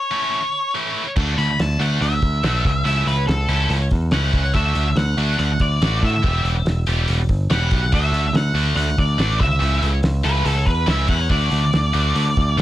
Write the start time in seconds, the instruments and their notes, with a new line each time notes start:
Already playing: lead electric guitar C#5
0.11 distorted electric guitar E3 A3 C#4 E4
0.75 distorted electric guitar E3 A3 C#4 E4
1.16 picked electric bass D2, distorted electric guitar D3 A3 D4 F#4, kick, crash
1.38 picked electric bass D2, lead electric guitar B5, open hi-hat
1.59 picked electric bass D2, lead electric guitar A5, snare, open hi-hat
1.79 picked electric bass D2, distorted electric guitar D3 A3 D4 F#4, lead electric guitar F#5, open hi-hat
2.01 picked electric bass D2, lead electric guitar E5, open hi-hat
2.22 picked electric bass D2, kick, open hi-hat
2.44 picked electric bass B1, distorted electric guitar D3 A3 D4 F#4, snare, open hi-hat
2.65 picked electric bass C#2, kick, open hi-hat
2.85 picked electric bass C#2, distorted electric guitar E3 A3 C#4 E4, lead electric guitar E5, open hi-hat
3.06 picked electric bass C#2, lead electric guitar B4, open hi-hat
3.27 picked electric bass C#2, lead electric guitar A4, snare, open hi-hat
3.48 picked electric bass C#2, distorted electric guitar E3 A3 C#4 E4, open hi-hat
3.70 picked electric bass C#2, open hi-hat
3.91 picked electric bass E2, kick, snare, open hi-hat
4.11 picked electric bass C#2, distorted electric guitar E3 A3 C#4 E4, lead electric guitar F#5, snare, open hi-hat
4.33 picked electric bass C#2, kick, open hi-hat
4.54 picked electric bass D2, distorted electric guitar D3 A3 D4 F#4, lead electric guitar E5, kick, open hi-hat
4.75 picked electric bass D2, open hi-hat
4.96 picked electric bass D2, lead electric guitar F#5, snare, open hi-hat
5.17 picked electric bass D2, distorted electric guitar D3 A3 D4 F#4, open hi-hat
5.39 picked electric bass D2, lead electric guitar F#5, open hi-hat
5.60 picked electric bass D2, lead electric guitar D5, kick, open hi-hat
5.81 picked electric bass A1, distorted electric guitar D3 A3 D4 F#4, snare, open hi-hat
6.03 picked electric bass A2, lead electric guitar E5, kick, open hi-hat
6.23 picked electric bass E1, distorted electric guitar E3 G3 B3 G4, kick, open hi-hat
6.43 picked electric bass E1, open hi-hat
6.65 picked electric bass E1, snare, open hi-hat
6.86 picked electric bass E1, distorted electric guitar E3 G3 B3 G4, open hi-hat
7.08 picked electric bass E1, open hi-hat
7.29 picked electric bass G1, kick, open hi-hat
7.50 picked electric bass E1, distorted electric guitar E3 G3 B3 G4, lead electric guitar F#5, snare, open hi-hat
7.71 picked electric bass B1, kick, open hi-hat
7.92 picked electric bass D2, distorted electric guitar D3 A3 D4 F#4, lead electric guitar E5, kick, open hi-hat
8.12 picked electric bass D2, open hi-hat
8.33 picked electric bass D2, lead electric guitar F#5, snare, open hi-hat
8.54 picked electric bass D2, distorted electric guitar D3 A3 D4 F#4, open hi-hat
8.75 picked electric bass D2, lead electric guitar F#5, open hi-hat
8.98 picked electric bass D2, lead electric guitar D5, kick, open hi-hat
9.18 picked electric bass A1, distorted electric guitar D3 A3 D4 F#4, snare, open hi-hat
9.40 picked electric bass C#2, lead electric guitar E5, kick, open hi-hat
9.60 picked electric bass C#2, distorted electric guitar E3 A3 C#4 E4, open hi-hat
9.82 picked electric bass C#2, open hi-hat
10.03 picked electric bass C#2, snare, open hi-hat
10.24 picked electric bass C#2, distorted electric guitar E3 A3 C#4 E4, lead electric guitar B4, open hi-hat
10.45 picked electric bass C#2, lead electric guitar A4, open hi-hat
10.66 picked electric bass E2, lead electric guitar B4, kick, open hi-hat
10.87 picked electric bass C#2, distorted electric guitar E3 A3 C#4 E4, lead electric guitar E5, snare, open hi-hat
11.08 picked electric bass E2, lead electric guitar F#5, kick, open hi-hat
11.29 picked electric bass D2, distorted electric guitar D3 A3 D4 F#4, lead electric guitar D5, kick, open hi-hat
11.51 picked electric bass D2, open hi-hat
11.73 picked electric bass D2, snare, open hi-hat
11.94 picked electric bass D2, distorted electric guitar D3 A3 D4 F#4, open hi-hat
12.15 picked electric bass D2, open hi-hat
12.37 picked electric bass D2, kick, open hi-hat
12.57 picked electric bass A1, distorted electric guitar D3 A3 D4